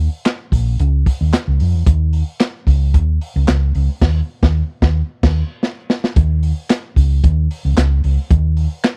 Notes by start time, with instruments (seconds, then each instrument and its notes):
0.26 snare, clap, closed hi-hat
0.52 fingered electric bass A#1, kick, open hi-hat
0.80 fingered electric bass C#2, closed hi-hat
1.06 kick, open hi-hat
1.21 fingered electric bass D#2
1.33 snare, clap, closed hi-hat
1.48 fingered electric bass C#2
1.60 fingered electric bass F2, open hi-hat
1.75 fingered electric bass E2
1.86 fingered electric bass D#2, kick, closed hi-hat
2.13 open hi-hat
2.40 snare, clap, closed hi-hat
2.67 fingered electric bass C#2, kick, open hi-hat
2.94 fingered electric bass D#2, kick, closed hi-hat
3.21 open hi-hat
3.36 fingered electric bass C#2
3.48 fingered electric bass C#2, snare, clap, closed hi-hat
3.75 fingered electric bass C#2, open hi-hat
4.01 fingered electric bass D#2, kick, snare, crash
4.43 fingered electric bass D#2, kick, snare
4.82 fingered electric bass D#2, kick, snare
5.23 fingered electric bass D#2, kick, snare, crash
5.63 snare
5.90 snare
6.04 snare
6.16 fingered electric bass D#2, kick, closed hi-hat
6.43 open hi-hat
6.70 snare, clap, closed hi-hat
6.96 fingered electric bass C#2, kick, open hi-hat
7.24 fingered electric bass D#2, kick, closed hi-hat
7.51 open hi-hat
7.65 fingered electric bass C#2
7.77 fingered electric bass C#2, snare, clap, closed hi-hat
8.04 fingered electric bass C#2, open hi-hat
8.31 fingered electric bass D#2, kick, closed hi-hat
8.57 open hi-hat
8.84 snare, clap, closed hi-hat